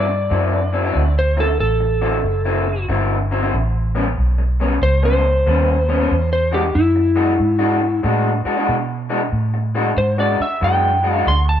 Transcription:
0.00 0.29 G2 medium
0.00 1.14 D5 medium
0.08 muted clean electric guitar stroke soft
0.30 0.93 F#2 medium
0.30 0.58 D3 medium
0.30 0.58 F#3 medium
0.30 0.58 C4 medium
0.30 0.58 E4 medium
0.72 0.84 D3 medium
0.72 0.83 F#3 medium
0.72 0.83 C4 medium
0.72 0.82 E4 medium
0.84 1.02 D3 medium
0.84 1.02 F#3 medium
0.84 1.02 C4 medium
0.84 1.01 E4 medium
0.95 1.58 D2 medium
1.19 1.39 C5 medium
1.37 1.48 D3 medium
1.37 1.47 F#3 medium
1.37 1.46 C4 medium
1.37 1.46 E4 medium
1.37 1.59 A4 medium
1.47 muted clean electric guitar stroke soft
1.60 2.23 A1 medium
1.60 2.85 A4 medium
1.80 muted clean electric guitar stroke medium
2.01 2.16 D3 medium
2.01 2.16 F#3 medium
2.01 2.16 C4 medium
2.01 2.17 E4 medium
2.24 2.87 F#1 medium
2.45 2.66 D3 medium
2.45 2.66 F#3 medium
2.45 2.66 C4 medium
2.45 2.66 E4 medium
2.67 muted clean electric guitar stroke soft
2.89 3.51 G1 medium
2.89 3.16 D3 medium
2.89 3.16 F#3 medium
2.89 3.16 C4 medium
2.89 3.16 E4 medium
3.31 3.42 D3 medium
3.31 3.42 F#3 medium
3.31 3.42 C4 medium
3.31 3.41 E4 medium
3.42 3.54 D3 medium
3.42 3.54 F#3 medium
3.42 3.54 C4 medium
3.42 3.53 E4 medium
3.54 4.16 A1 medium
3.95 4.06 A2 medium
3.95 4.07 G3 medium
3.95 4.06 B3 medium
3.95 4.06 C#4 medium
4.08 muted clean electric guitar stroke medium
4.18 4.80 B1 medium
4.38 muted clean electric guitar stroke soft
4.60 4.74 A2 medium
4.60 4.75 G3 medium
4.60 4.75 B3 medium
4.60 4.75 C#4 loud
4.82 5.44 C#2 medium
4.82 5.03 C5 loud
5.03 5.23 A2 medium
5.03 5.23 G3 medium
5.03 5.24 B3 medium
5.03 5.24 C#4 medium
5.03 6.29 C5 loud
5.24 muted clean electric guitar stroke soft
5.46 6.09 D#2 medium
5.46 5.73 A2 medium
5.46 5.74 G3 medium
5.46 5.74 B3 medium
5.46 5.74 C#4 medium
5.88 5.99 A2 medium
5.88 5.99 G3 medium
5.88 5.99 B3 medium
5.88 5.98 C#4 medium
6.00 6.11 A2 medium
6.00 6.11 G3 medium
6.00 6.11 B3 medium
6.00 6.11 C#4 loud
6.11 6.74 E2 medium
6.33 6.53 C5 medium
6.52 6.63 E3 medium
6.52 6.64 G#3 medium
6.52 6.63 D4 medium
6.52 6.62 F#4 loud
6.52 6.75 G4 medium
6.63 muted clean electric guitar stroke soft
6.75 7.38 F#2 medium
6.75 8.00 E4 loud
6.96 muted clean electric guitar stroke soft
7.16 7.31 E3 medium
7.16 7.31 G#3 medium
7.16 7.32 D4 medium
7.16 7.32 F#4 medium
7.40 8.02 G#2 medium
7.59 7.79 E3 medium
7.59 7.79 G#3 medium
7.59 7.80 D4 medium
7.59 7.80 F#4 loud
7.81 muted clean electric guitar stroke soft
8.03 8.43 A2 medium
8.03 8.31 E3 medium
8.03 8.31 G#3 medium
8.03 8.31 D4 medium
8.03 8.31 F#4 medium
8.45 8.56 E3 medium
8.45 8.56 G#3 medium
8.45 8.55 D4 medium
8.45 8.56 F#4 medium
8.45 muted fingered electric bass stroke soft
8.57 8.75 E3 medium
8.57 8.75 G#3 medium
8.57 8.75 D4 medium
8.57 8.75 F#4 medium
8.69 9.31 B2 medium
9.10 9.21 E3 medium
9.10 9.21 G#3 medium
9.10 9.21 D4 medium
9.10 9.20 F#4 medium
9.21 muted clean electric guitar stroke soft
9.32 9.95 A2 medium
9.54 muted clean electric guitar stroke soft
9.75 9.90 E3 medium
9.75 9.90 G#3 medium
9.75 9.90 D4 medium
9.75 9.90 F#4 medium
9.97 10.36 G#2 medium
9.97 10.18 C5 medium
10.18 10.39 E3 medium
10.18 10.39 G#3 medium
10.18 10.39 D4 medium
10.18 10.39 F#4 loud
10.18 10.40 D5 medium
10.40 10.62 E5 medium
10.40 muted clean electric guitar stroke soft
10.40 muted fingered electric bass stroke soft
10.61 11.24 F#2 medium
10.61 10.89 E3 medium
10.61 10.89 G#3 medium
10.61 10.89 D4 loud
10.61 10.89 F#4 medium
10.61 11.13 G5 medium
11.03 11.14 E3 medium
11.03 11.15 G#3 medium
11.03 11.14 D4 medium
11.03 11.14 F#4 medium
11.13 11.27 E3 medium
11.13 11.27 G#3 medium
11.13 11.26 D4 medium
11.13 11.26 F#4 loud
11.13 11.25 F5 medium
11.27 11.60 D2 medium
11.27 11.48 C6 loud
11.49 11.60 A5 medium

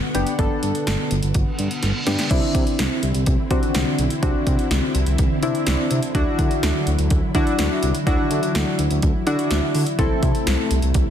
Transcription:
0.00 2.27 D3 medium
0.00 2.27 B3 medium
0.00 2.27 F#5 medium
0.15 0.24 F#1 medium
0.15 0.33 B3 medium
0.15 0.33 D4 medium
0.15 0.33 G4 medium
0.15 closed hi-hat medium
0.27 closed hi-hat medium
0.39 0.48 G1 loud
0.39 1.14 B3 medium
0.39 1.14 D4 medium
0.39 1.14 A4 medium
0.39 kick loud
0.39 closed hi-hat medium
0.63 0.72 G2 loud
0.63 closed hi-hat medium
0.75 closed hi-hat medium
0.87 0.96 G1 loud
0.87 snare loud
0.87 closed hi-hat medium
1.11 1.20 G1 loud
1.11 closed hi-hat medium
1.23 1.32 G1 medium
1.23 closed hi-hat medium
1.34 1.44 G1 loud
1.34 kick medium
1.34 closed hi-hat medium
1.34 reverse cymbal medium
1.59 1.68 G2 medium
1.59 closed hi-hat medium
1.71 closed hi-hat soft
1.83 1.92 G1 loud
1.83 snare medium
1.83 closed hi-hat medium
2.07 2.16 G2 loud
2.07 2.25 B3 medium
2.07 2.25 D4 medium
2.07 2.25 G4 medium
2.07 snare medium
2.07 closed hi-hat medium
2.19 snare medium
2.19 closed hi-hat medium
2.31 2.40 C2 loud
2.31 9.95 D3 medium
2.31 3.06 C4 medium
2.31 6.11 C4 medium
2.31 3.06 D4 medium
2.31 3.06 E4 medium
2.31 6.11 E4 medium
2.31 kick loud
2.31 closed hi-hat medium
2.31 crash loud
2.55 2.64 C3 loud
2.55 kick loud
2.55 closed hi-hat medium
2.67 closed hi-hat medium
2.79 2.88 C2 loud
2.79 snare loud
2.79 closed hi-hat medium
3.03 3.12 C2 loud
3.03 closed hi-hat medium
3.15 3.24 C2 loud
3.15 closed hi-hat medium
3.26 3.36 C2 loud
3.26 kick medium
3.26 closed hi-hat medium
3.51 3.60 C3 loud
3.51 4.07 C4 medium
3.51 4.07 D4 medium
3.51 4.07 F#4 medium
3.51 kick loud
3.51 closed hi-hat medium
3.63 closed hi-hat medium
3.75 3.84 C2 loud
3.75 snare loud
3.75 closed hi-hat medium
3.99 4.08 B1 loud
3.99 closed hi-hat medium
4.10 closed hi-hat medium
4.23 4.32 C2 loud
4.23 4.98 C4 medium
4.23 4.98 D4 medium
4.23 4.98 F#4 medium
4.23 kick loud
4.23 closed hi-hat medium
4.47 4.56 C3 medium
4.47 kick loud
4.47 closed hi-hat medium
4.59 closed hi-hat medium
4.71 4.80 C2 loud
4.71 snare loud
4.71 closed hi-hat medium
4.95 5.04 C2 loud
4.95 closed hi-hat medium
5.06 5.16 C2 loud
5.06 closed hi-hat medium
5.18 5.28 C2 loud
5.18 kick loud
5.18 closed hi-hat medium
5.43 5.52 C3 loud
5.43 5.99 C4 medium
5.43 5.99 D4 medium
5.43 5.99 E4 loud
5.43 closed hi-hat medium
5.55 closed hi-hat medium
5.67 5.76 C2 loud
5.67 snare loud
5.67 closed hi-hat medium
5.91 6.00 C3 loud
5.91 closed hi-hat medium
6.03 closed hi-hat medium
6.15 6.24 D2 loud
6.15 9.95 F#3 medium
6.15 6.90 D4 medium
6.15 6.90 E4 medium
6.15 11.10 E4 medium
6.15 6.90 F#4 loud
6.15 kick loud
6.15 closed hi-hat medium
6.39 6.48 D3 loud
6.39 kick loud
6.39 closed hi-hat medium
6.51 closed hi-hat medium
6.63 6.72 D2 loud
6.63 snare loud
6.63 closed hi-hat medium
6.87 6.96 D2 medium
6.87 closed hi-hat medium
6.99 7.08 D2 loud
6.99 closed hi-hat medium
7.10 7.20 D2 loud
7.10 kick medium
7.10 closed hi-hat medium
7.35 7.44 D3 loud
7.35 7.91 D4 medium
7.35 7.91 E4 medium
7.35 7.91 F#4 loud
7.35 kick loud
7.35 closed hi-hat medium
7.47 closed hi-hat soft
7.59 7.68 D2 loud
7.59 snare loud
7.59 closed hi-hat medium
7.83 7.92 C2 medium
7.83 closed hi-hat medium
7.95 closed hi-hat medium
8.07 8.16 D2 loud
8.07 8.82 D4 medium
8.07 8.82 E4 medium
8.07 8.82 F#4 medium
8.07 kick loud
8.07 closed hi-hat medium
8.31 8.40 D3 loud
8.31 closed hi-hat medium
8.43 closed hi-hat medium
8.55 8.64 D2 loud
8.55 snare loud
8.55 closed hi-hat medium
8.79 8.88 D2 loud
8.79 closed hi-hat medium
8.91 9.00 D2 loud
8.91 closed hi-hat medium
9.02 9.12 D2 loud
9.02 kick loud
9.02 closed hi-hat medium
9.27 9.36 D3 loud
9.27 9.83 D4 medium
9.27 9.83 E4 medium
9.27 9.83 F#4 loud
9.27 closed hi-hat medium
9.39 closed hi-hat medium
9.51 9.60 D2 loud
9.51 snare loud
9.51 closed hi-hat medium
9.75 9.84 D3 loud
9.75 open hi-hat medium
9.87 closed hi-hat medium
9.99 10.08 C2 loud
9.99 11.10 C3 medium
9.99 11.10 A3 medium
9.99 10.74 C4 medium
9.99 10.74 E4 medium
9.99 10.74 A4 medium
9.99 kick loud
9.99 closed hi-hat medium
10.23 10.32 C3 medium
10.23 kick loud
10.23 closed hi-hat medium
10.35 closed hi-hat medium
10.47 10.56 C2 loud
10.47 snare loud
10.47 closed hi-hat medium
10.71 10.80 C2 loud
10.71 closed hi-hat medium
10.82 10.92 C2 loud
10.82 closed hi-hat medium
10.94 11.04 C2 loud
10.94 kick loud
10.94 closed hi-hat medium

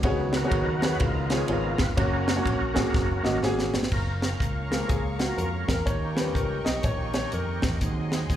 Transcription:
0.03 0.45 C#2 loud
0.03 0.79 C#3 medium
0.03 0.97 D#3 medium
0.03 0.97 F#3 medium
0.03 0.32 B3 medium
0.03 0.98 B3 medium
0.03 0.32 F#4 medium
0.03 0.33 G#4 medium
0.03 0.33 C#5 loud
0.03 kick loud
0.03 ride bell medium
0.33 0.98 F#4 medium
0.33 snare loud
0.33 ride bell medium
0.37 0.85 A#4 loud
0.43 0.66 B3 medium
0.43 0.66 F#4 medium
0.43 0.66 G#4 medium
0.43 0.67 C#5 medium
0.51 0.93 D#2 loud
0.51 kick medium
0.51 ride bell medium
0.82 1.00 B3 medium
0.82 1.01 F#4 medium
0.82 1.01 G#4 medium
0.82 1.02 B4 loud
0.82 1.01 C#5 medium
0.82 snare loud
0.82 ride bell medium
0.99 1.42 C#2 loud
0.99 1.75 C#3 medium
0.99 1.75 D#3 medium
0.99 1.75 F3 medium
0.99 1.76 B3 medium
0.99 1.94 F4 medium
0.99 1.22 A#4 loud
0.99 kick loud
0.99 ride bell medium
1.23 1.31 A#4 medium
1.30 1.42 B3 medium
1.30 1.42 F4 medium
1.30 1.42 G#4 medium
1.30 1.43 C#5 medium
1.30 snare loud
1.30 ride bell medium
1.34 1.50 G#4 medium
1.48 1.75 G#1 medium
1.48 1.84 B3 medium
1.48 1.84 F4 medium
1.48 1.84 G#4 medium
1.48 1.84 C#5 medium
1.48 ride bell medium
1.52 1.82 A#4 medium
1.78 1.95 G1 medium
1.78 1.90 B4 loud
1.78 kick loud
1.78 snare loud
1.78 ride bell medium
1.96 2.39 F#1 loud
1.96 2.33 C#3 medium
1.96 2.34 F#3 medium
1.96 2.26 A#3 medium
1.96 2.33 A#3 medium
1.96 2.26 C#4 medium
1.96 3.40 C#4 medium
1.96 2.26 F#4 medium
1.96 3.40 F#4 medium
1.96 3.41 A#4 medium
1.96 2.26 C#5 medium
1.96 kick loud
1.96 ride bell medium
2.28 snare loud
2.28 ride bell medium
2.35 2.59 A#3 medium
2.35 2.59 C#4 medium
2.35 2.59 F#4 medium
2.35 2.60 C#5 medium
2.46 2.87 A#1 medium
2.46 kick medium
2.46 ride bell medium
2.74 3.02 A#3 medium
2.74 3.02 C#4 medium
2.74 3.02 F#4 medium
2.74 3.02 G#4 medium
2.74 kick medium
2.74 snare loud
2.74 ride bell medium
2.94 3.20 F#1 medium
2.94 3.22 C#3 soft
2.94 3.22 F#3 soft
2.94 3.22 A#3 medium
2.94 kick loud
2.94 snare medium
3.23 3.41 G#1 medium
3.23 3.36 A#3 medium
3.23 3.36 C#4 medium
3.23 3.36 F#4 medium
3.23 3.36 D#5 medium
3.23 snare medium
3.43 3.69 G#1 medium
3.43 3.78 A#3 medium
3.43 3.78 C#4 medium
3.43 3.79 F#4 medium
3.43 3.79 G#4 loud
3.43 snare medium
3.59 snare medium
3.74 3.90 G1 medium
3.74 snare loud
3.83 snare medium
3.92 4.33 F#1 loud
3.92 7.78 A#3 medium
3.92 7.78 C#4 medium
3.92 5.85 F4 medium
3.92 5.85 A#4 medium
3.92 5.85 C#5 medium
3.92 5.85 F5 medium
3.92 7.78 A#5 medium
3.92 5.85 C#6 medium
3.92 kick medium
3.92 crash medium
4.22 snare medium
4.22 closed hi-hat medium
4.40 4.82 C#2 medium
4.40 kick medium
4.40 closed hi-hat medium
4.70 5.82 F3 soft
4.70 5.83 G#3 soft
4.70 5.83 A#3 medium
4.70 4.90 A#4 medium
4.70 snare loud
4.70 closed hi-hat medium
4.88 5.31 C#2 medium
4.88 5.17 G#4 medium
4.88 kick loud
4.88 closed hi-hat medium
5.19 5.38 F#4 medium
5.19 snare medium
5.19 closed hi-hat medium
5.37 5.64 F2 medium
5.37 5.44 A#4 medium
5.37 closed hi-hat medium
5.68 5.84 E2 medium
5.68 5.87 A#4 medium
5.68 kick medium
5.68 snare loud
5.68 closed hi-hat medium
5.86 6.28 D#2 medium
5.86 7.80 D#3 medium
5.86 7.80 G4 medium
5.86 6.18 C#5 medium
5.86 8.36 D#5 medium
5.86 7.80 G5 medium
5.86 7.80 C#6 medium
5.86 kick medium
5.86 closed hi-hat medium
6.15 6.80 F3 medium
6.15 6.80 G3 soft
6.15 6.81 C#4 medium
6.15 6.36 B4 medium
6.15 snare medium
6.15 closed hi-hat medium
6.35 6.61 C#2 medium
6.35 6.63 A#4 medium
6.35 kick medium
6.35 closed hi-hat medium
6.65 6.82 B1 medium
6.65 6.82 D#5 medium
6.65 snare loud
6.65 closed hi-hat medium
6.83 7.25 A#1 medium
6.83 7.12 C#5 loud
6.83 kick loud
6.83 closed hi-hat medium
7.14 7.33 C#5 loud
7.14 snare medium
7.14 closed hi-hat medium
7.32 7.59 F2 medium
7.32 7.79 A#4 medium
7.32 closed hi-hat medium
7.62 7.79 E2 medium
7.62 kick medium
7.62 snare loud
7.62 closed hi-hat medium
7.81 8.23 D#2 loud
7.81 8.36 F#3 medium
7.81 8.36 C4 medium
7.81 8.36 D#4 medium
7.81 8.36 G#4 medium
7.81 8.36 F#5 medium
7.81 8.36 G#5 medium
7.81 8.36 C6 medium
7.81 kick medium
7.81 closed hi-hat loud
8.12 snare medium
8.12 closed hi-hat medium
8.30 8.36 D#2 medium
8.30 kick medium
8.30 closed hi-hat medium

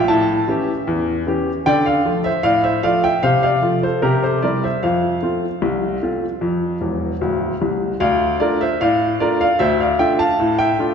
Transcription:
0.08 0.42 A2 medium
0.08 0.83 E5 medium
0.08 0.71 A5 medium
0.48 0.69 E3 medium
0.48 0.70 C#4 medium
0.48 0.70 G4 medium
0.87 1.21 E2 medium
1.27 1.48 E3 medium
1.27 1.49 C#4 soft
1.27 1.49 G4 medium
1.66 2.00 D3 medium
1.66 1.85 D5 medium
1.66 1.86 G5 loud
1.86 2.23 D5 medium
1.86 2.17 F5 medium
2.05 2.27 F3 medium
2.05 2.27 A3 medium
2.05 2.27 F4 medium
2.24 2.44 C5 medium
2.24 2.44 E5 medium
2.43 2.77 A2 medium
2.43 2.63 D5 medium
2.43 2.64 F5 loud
2.64 2.83 C5 medium
2.64 2.84 E5 medium
2.83 3.05 F3 soft
2.83 3.06 A3 soft
2.83 3.06 F4 medium
2.83 3.02 D5 medium
2.83 3.03 F5 medium
3.04 3.23 E5 medium
3.04 3.23 G5 medium
3.23 3.57 C3 medium
3.23 3.42 C5 medium
3.23 3.41 F5 medium
3.43 3.81 D5 medium
3.43 3.75 F5 medium
3.62 3.84 F3 soft
3.62 3.84 A3 soft
3.62 3.85 F4 soft
3.83 4.02 A4 medium
3.83 4.03 C5 medium
4.02 4.36 C3 medium
4.02 4.22 G4 medium
4.02 4.22 A#4 medium
4.23 4.42 A4 soft
4.23 4.43 C5 medium
4.42 4.65 G3 soft
4.42 4.65 C4 soft
4.42 4.66 E4 soft
4.42 4.62 A#4 medium
4.42 4.62 D5 medium
4.64 4.82 C5 medium
4.64 4.83 E5 medium
4.83 5.17 F2 medium
4.83 7.18 C5 medium
4.83 6.74 F5 medium
5.22 5.44 A3 soft
5.22 5.45 C4 soft
5.22 5.45 F4 soft
5.62 5.96 C2 medium
6.02 6.24 A3 soft
6.02 6.25 C4 soft
6.02 6.25 F4 soft
6.41 6.75 F2 medium
6.81 7.11 E1 medium
6.81 7.11 E2 medium
7.21 7.51 D1 medium
7.21 7.51 D2 medium
7.62 7.91 C2 medium
8.00 8.34 D2 medium
8.00 8.38 D5 medium
8.00 8.38 F5 medium
8.40 8.63 A3 soft
8.40 8.63 D4 soft
8.40 8.63 F4 medium
8.40 8.60 A#4 medium
8.40 8.60 D5 medium
8.61 8.80 C5 medium
8.61 8.81 E5 medium
8.81 9.14 A2 medium
8.81 9.18 D5 medium
8.81 9.18 F5 medium
9.20 9.42 A3 soft
9.20 9.42 D4 medium
9.20 9.43 F4 medium
9.20 9.39 A#4 medium
9.20 9.40 D5 medium
9.41 9.59 D5 medium
9.41 9.60 F5 medium
9.59 9.93 D2 medium
9.59 9.78 C5 medium
9.59 9.79 E5 medium
9.80 9.99 D5 medium
9.80 9.99 F5 medium
9.99 10.21 A3 soft
9.99 10.21 D4 medium
9.99 10.22 F4 medium
9.99 10.18 E5 medium
9.99 10.19 G5 medium
10.19 10.56 F5 medium
10.19 10.56 A5 loud
10.39 10.72 A2 medium
10.59 10.94 E5 medium
10.59 10.90 G5 loud
10.79 10.94 A3 medium
10.79 10.94 D4 medium
10.79 10.94 F4 medium

